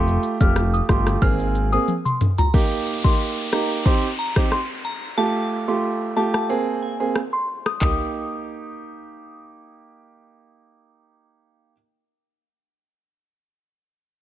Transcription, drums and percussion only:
0, 0, Header, 1, 2, 480
1, 0, Start_track
1, 0, Key_signature, -3, "major"
1, 0, Tempo, 659341
1, 1848, Time_signature, 4, 2, 24, 8
1, 10349, End_track
2, 0, Start_track
2, 0, Title_t, "Drums"
2, 56, Note_on_c, 9, 82, 54
2, 129, Note_off_c, 9, 82, 0
2, 168, Note_on_c, 9, 42, 74
2, 168, Note_on_c, 9, 82, 52
2, 241, Note_off_c, 9, 42, 0
2, 241, Note_off_c, 9, 82, 0
2, 296, Note_on_c, 9, 36, 95
2, 296, Note_on_c, 9, 82, 97
2, 369, Note_off_c, 9, 36, 0
2, 369, Note_off_c, 9, 82, 0
2, 408, Note_on_c, 9, 37, 91
2, 408, Note_on_c, 9, 60, 75
2, 409, Note_on_c, 9, 82, 78
2, 481, Note_off_c, 9, 37, 0
2, 481, Note_off_c, 9, 60, 0
2, 482, Note_off_c, 9, 82, 0
2, 538, Note_on_c, 9, 82, 54
2, 610, Note_off_c, 9, 82, 0
2, 648, Note_on_c, 9, 37, 97
2, 649, Note_on_c, 9, 36, 94
2, 649, Note_on_c, 9, 60, 55
2, 649, Note_on_c, 9, 61, 74
2, 650, Note_on_c, 9, 42, 89
2, 650, Note_on_c, 9, 82, 64
2, 721, Note_off_c, 9, 37, 0
2, 722, Note_off_c, 9, 36, 0
2, 722, Note_off_c, 9, 60, 0
2, 722, Note_off_c, 9, 61, 0
2, 723, Note_off_c, 9, 42, 0
2, 723, Note_off_c, 9, 82, 0
2, 776, Note_on_c, 9, 37, 92
2, 776, Note_on_c, 9, 60, 71
2, 777, Note_on_c, 9, 82, 77
2, 849, Note_off_c, 9, 37, 0
2, 849, Note_off_c, 9, 60, 0
2, 850, Note_off_c, 9, 82, 0
2, 887, Note_on_c, 9, 36, 104
2, 889, Note_on_c, 9, 60, 68
2, 889, Note_on_c, 9, 82, 73
2, 960, Note_off_c, 9, 36, 0
2, 962, Note_off_c, 9, 60, 0
2, 962, Note_off_c, 9, 82, 0
2, 1014, Note_on_c, 9, 82, 55
2, 1087, Note_off_c, 9, 82, 0
2, 1130, Note_on_c, 9, 42, 81
2, 1130, Note_on_c, 9, 82, 58
2, 1203, Note_off_c, 9, 42, 0
2, 1203, Note_off_c, 9, 82, 0
2, 1255, Note_on_c, 9, 82, 61
2, 1328, Note_off_c, 9, 82, 0
2, 1368, Note_on_c, 9, 48, 65
2, 1368, Note_on_c, 9, 82, 67
2, 1441, Note_off_c, 9, 48, 0
2, 1441, Note_off_c, 9, 82, 0
2, 1495, Note_on_c, 9, 47, 65
2, 1498, Note_on_c, 9, 82, 55
2, 1568, Note_off_c, 9, 47, 0
2, 1570, Note_off_c, 9, 82, 0
2, 1608, Note_on_c, 9, 42, 89
2, 1608, Note_on_c, 9, 45, 102
2, 1608, Note_on_c, 9, 82, 63
2, 1609, Note_on_c, 9, 61, 78
2, 1681, Note_off_c, 9, 42, 0
2, 1681, Note_off_c, 9, 45, 0
2, 1681, Note_off_c, 9, 82, 0
2, 1682, Note_off_c, 9, 61, 0
2, 1733, Note_on_c, 9, 82, 83
2, 1735, Note_on_c, 9, 43, 97
2, 1735, Note_on_c, 9, 60, 84
2, 1806, Note_off_c, 9, 82, 0
2, 1808, Note_off_c, 9, 43, 0
2, 1808, Note_off_c, 9, 60, 0
2, 1848, Note_on_c, 9, 49, 85
2, 1849, Note_on_c, 9, 36, 114
2, 1921, Note_off_c, 9, 36, 0
2, 1921, Note_off_c, 9, 49, 0
2, 2087, Note_on_c, 9, 42, 73
2, 2160, Note_off_c, 9, 42, 0
2, 2216, Note_on_c, 9, 36, 93
2, 2289, Note_off_c, 9, 36, 0
2, 2568, Note_on_c, 9, 37, 94
2, 2570, Note_on_c, 9, 42, 88
2, 2640, Note_off_c, 9, 37, 0
2, 2642, Note_off_c, 9, 42, 0
2, 2808, Note_on_c, 9, 36, 94
2, 2880, Note_off_c, 9, 36, 0
2, 3050, Note_on_c, 9, 42, 75
2, 3122, Note_off_c, 9, 42, 0
2, 3175, Note_on_c, 9, 37, 88
2, 3176, Note_on_c, 9, 36, 82
2, 3248, Note_off_c, 9, 37, 0
2, 3249, Note_off_c, 9, 36, 0
2, 3289, Note_on_c, 9, 37, 83
2, 3361, Note_off_c, 9, 37, 0
2, 3529, Note_on_c, 9, 42, 85
2, 3601, Note_off_c, 9, 42, 0
2, 4617, Note_on_c, 9, 37, 87
2, 4690, Note_off_c, 9, 37, 0
2, 5209, Note_on_c, 9, 37, 84
2, 5282, Note_off_c, 9, 37, 0
2, 5576, Note_on_c, 9, 37, 86
2, 5649, Note_off_c, 9, 37, 0
2, 5689, Note_on_c, 9, 36, 93
2, 5689, Note_on_c, 9, 39, 79
2, 5689, Note_on_c, 9, 43, 92
2, 5762, Note_off_c, 9, 36, 0
2, 5762, Note_off_c, 9, 39, 0
2, 5762, Note_off_c, 9, 43, 0
2, 10349, End_track
0, 0, End_of_file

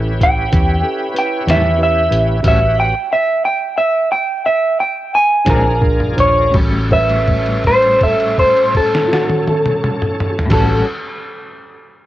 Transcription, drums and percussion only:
0, 0, Header, 1, 2, 480
1, 0, Start_track
1, 0, Tempo, 641026
1, 1824, Time_signature, 12, 3, 24, 8
1, 2312, Tempo, 672646
1, 3752, Tempo, 714286
1, 4712, Tempo, 734394
1, 8326, End_track
2, 0, Start_track
2, 0, Title_t, "Drums"
2, 157, Note_on_c, 9, 36, 74
2, 160, Note_on_c, 9, 42, 60
2, 232, Note_off_c, 9, 36, 0
2, 234, Note_off_c, 9, 42, 0
2, 393, Note_on_c, 9, 42, 74
2, 395, Note_on_c, 9, 36, 94
2, 468, Note_off_c, 9, 42, 0
2, 470, Note_off_c, 9, 36, 0
2, 870, Note_on_c, 9, 42, 48
2, 945, Note_off_c, 9, 42, 0
2, 1111, Note_on_c, 9, 42, 63
2, 1121, Note_on_c, 9, 38, 90
2, 1186, Note_off_c, 9, 42, 0
2, 1196, Note_off_c, 9, 38, 0
2, 1590, Note_on_c, 9, 42, 50
2, 1665, Note_off_c, 9, 42, 0
2, 1828, Note_on_c, 9, 36, 93
2, 1828, Note_on_c, 9, 42, 63
2, 1828, Note_on_c, 9, 49, 64
2, 1903, Note_off_c, 9, 36, 0
2, 1903, Note_off_c, 9, 42, 0
2, 1903, Note_off_c, 9, 49, 0
2, 3991, Note_on_c, 9, 42, 69
2, 3992, Note_on_c, 9, 36, 77
2, 4000, Note_on_c, 9, 38, 72
2, 4058, Note_off_c, 9, 42, 0
2, 4060, Note_off_c, 9, 36, 0
2, 4067, Note_off_c, 9, 38, 0
2, 4232, Note_on_c, 9, 36, 62
2, 4299, Note_off_c, 9, 36, 0
2, 4355, Note_on_c, 9, 45, 61
2, 4422, Note_off_c, 9, 45, 0
2, 4475, Note_on_c, 9, 42, 48
2, 4475, Note_on_c, 9, 43, 67
2, 4542, Note_off_c, 9, 42, 0
2, 4542, Note_off_c, 9, 43, 0
2, 4716, Note_on_c, 9, 49, 68
2, 4718, Note_on_c, 9, 36, 79
2, 4781, Note_off_c, 9, 49, 0
2, 4784, Note_off_c, 9, 36, 0
2, 4958, Note_on_c, 9, 36, 54
2, 4958, Note_on_c, 9, 49, 40
2, 5023, Note_off_c, 9, 36, 0
2, 5024, Note_off_c, 9, 49, 0
2, 5078, Note_on_c, 9, 57, 41
2, 5143, Note_off_c, 9, 57, 0
2, 5196, Note_on_c, 9, 49, 38
2, 5197, Note_on_c, 9, 36, 56
2, 5261, Note_off_c, 9, 49, 0
2, 5262, Note_off_c, 9, 36, 0
2, 5316, Note_on_c, 9, 57, 38
2, 5381, Note_off_c, 9, 57, 0
2, 5434, Note_on_c, 9, 49, 39
2, 5436, Note_on_c, 9, 36, 50
2, 5500, Note_off_c, 9, 49, 0
2, 5502, Note_off_c, 9, 36, 0
2, 5553, Note_on_c, 9, 57, 38
2, 5618, Note_off_c, 9, 57, 0
2, 5675, Note_on_c, 9, 49, 40
2, 5677, Note_on_c, 9, 36, 58
2, 5740, Note_off_c, 9, 49, 0
2, 5742, Note_off_c, 9, 36, 0
2, 5800, Note_on_c, 9, 57, 41
2, 5865, Note_off_c, 9, 57, 0
2, 5919, Note_on_c, 9, 36, 53
2, 5921, Note_on_c, 9, 49, 45
2, 5984, Note_off_c, 9, 36, 0
2, 5987, Note_off_c, 9, 49, 0
2, 6040, Note_on_c, 9, 57, 39
2, 6106, Note_off_c, 9, 57, 0
2, 6158, Note_on_c, 9, 36, 50
2, 6158, Note_on_c, 9, 49, 46
2, 6223, Note_off_c, 9, 36, 0
2, 6223, Note_off_c, 9, 49, 0
2, 6289, Note_on_c, 9, 38, 70
2, 6355, Note_off_c, 9, 38, 0
2, 6408, Note_on_c, 9, 38, 82
2, 6473, Note_off_c, 9, 38, 0
2, 6516, Note_on_c, 9, 48, 78
2, 6581, Note_off_c, 9, 48, 0
2, 6633, Note_on_c, 9, 48, 81
2, 6699, Note_off_c, 9, 48, 0
2, 6752, Note_on_c, 9, 47, 77
2, 6817, Note_off_c, 9, 47, 0
2, 6871, Note_on_c, 9, 47, 81
2, 6937, Note_off_c, 9, 47, 0
2, 6990, Note_on_c, 9, 45, 90
2, 7055, Note_off_c, 9, 45, 0
2, 7110, Note_on_c, 9, 45, 81
2, 7175, Note_off_c, 9, 45, 0
2, 7232, Note_on_c, 9, 43, 88
2, 7297, Note_off_c, 9, 43, 0
2, 7305, Note_on_c, 9, 49, 89
2, 7308, Note_on_c, 9, 36, 92
2, 7313, Note_on_c, 9, 38, 86
2, 7370, Note_off_c, 9, 49, 0
2, 7373, Note_off_c, 9, 36, 0
2, 7379, Note_off_c, 9, 38, 0
2, 8326, End_track
0, 0, End_of_file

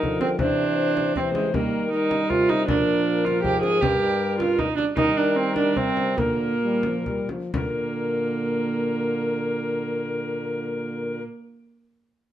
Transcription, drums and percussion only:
0, 0, Header, 1, 2, 480
1, 0, Start_track
1, 0, Tempo, 379987
1, 509, Time_signature, 3, 2, 24, 8
1, 5789, Tempo, 399467
1, 7709, Tempo, 454890
1, 9149, Tempo, 487013
1, 13860, End_track
2, 0, Start_track
2, 0, Title_t, "Frame drum"
2, 41, Note_on_c, 9, 64, 47
2, 168, Note_off_c, 9, 64, 0
2, 264, Note_on_c, 9, 64, 51
2, 390, Note_off_c, 9, 64, 0
2, 490, Note_on_c, 9, 64, 70
2, 617, Note_off_c, 9, 64, 0
2, 1225, Note_on_c, 9, 64, 50
2, 1351, Note_off_c, 9, 64, 0
2, 1461, Note_on_c, 9, 64, 48
2, 1587, Note_off_c, 9, 64, 0
2, 1705, Note_on_c, 9, 64, 52
2, 1831, Note_off_c, 9, 64, 0
2, 1945, Note_on_c, 9, 64, 69
2, 2072, Note_off_c, 9, 64, 0
2, 2667, Note_on_c, 9, 64, 52
2, 2793, Note_off_c, 9, 64, 0
2, 2909, Note_on_c, 9, 64, 46
2, 3035, Note_off_c, 9, 64, 0
2, 3152, Note_on_c, 9, 64, 48
2, 3278, Note_off_c, 9, 64, 0
2, 3391, Note_on_c, 9, 64, 68
2, 3517, Note_off_c, 9, 64, 0
2, 4125, Note_on_c, 9, 64, 46
2, 4251, Note_off_c, 9, 64, 0
2, 4350, Note_on_c, 9, 64, 47
2, 4476, Note_off_c, 9, 64, 0
2, 4590, Note_on_c, 9, 64, 45
2, 4717, Note_off_c, 9, 64, 0
2, 4830, Note_on_c, 9, 64, 72
2, 4957, Note_off_c, 9, 64, 0
2, 5559, Note_on_c, 9, 64, 54
2, 5686, Note_off_c, 9, 64, 0
2, 5794, Note_on_c, 9, 64, 52
2, 5914, Note_off_c, 9, 64, 0
2, 6031, Note_on_c, 9, 64, 49
2, 6151, Note_off_c, 9, 64, 0
2, 6251, Note_on_c, 9, 64, 73
2, 6372, Note_off_c, 9, 64, 0
2, 6962, Note_on_c, 9, 64, 51
2, 7082, Note_off_c, 9, 64, 0
2, 7208, Note_on_c, 9, 64, 44
2, 7328, Note_off_c, 9, 64, 0
2, 7456, Note_on_c, 9, 64, 46
2, 7577, Note_off_c, 9, 64, 0
2, 7705, Note_on_c, 9, 64, 69
2, 7811, Note_off_c, 9, 64, 0
2, 8397, Note_on_c, 9, 64, 50
2, 8503, Note_off_c, 9, 64, 0
2, 8639, Note_on_c, 9, 64, 44
2, 8744, Note_off_c, 9, 64, 0
2, 8880, Note_on_c, 9, 64, 45
2, 8986, Note_off_c, 9, 64, 0
2, 9141, Note_on_c, 9, 64, 72
2, 9240, Note_off_c, 9, 64, 0
2, 13860, End_track
0, 0, End_of_file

